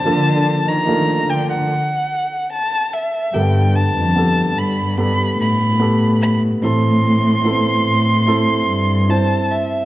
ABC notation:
X:1
M:4/4
L:1/16
Q:1/4=73
K:Cdor
V:1 name="Violin"
a3 b3 g _g4- g a2 =e2 | [K:Gmix] g2 a4 b2 b2 b4 b2 | c'12 a2 e2 |]
V:2 name="Grand piano"
[B,DFA]4 [A,B,DF]4 z8 | [K:Gmix] [_B,=B,GA]4 [B,GA]4 [B,GA]4 [B,GA]4 | [CEA]4 [B,CEA]4 [CEA]4 [CEc]4 |]
V:3 name="Grand piano" clef=bass
F,6 z8 z2 | [K:Gmix] [G,,D,]6 z8 z2 | [A,,E,]6 z8 z2 |]
V:4 name="Cello section" clef=bass
D,3 E,3 D,2 z8 | [K:Gmix] G,,3 F,,3 G,,4 A,,6 | A,,6 A,,4 G,,4 z2 |]